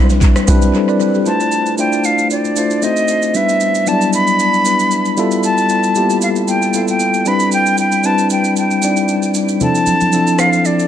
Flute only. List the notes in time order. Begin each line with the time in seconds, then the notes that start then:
1.27 A5
1.79 G5
2.05 F5
2.31 D5
2.84 D#5
3.36 E5
3.88 A5
4.14 B5
5.44 A5
6.23 F5
6.49 G5
6.89 G5
7.27 B5
7.53 G5
7.80 G5
8.06 A5
8.32 G5
8.58 G5
9.62 A5
10.40 F5
10.66 D5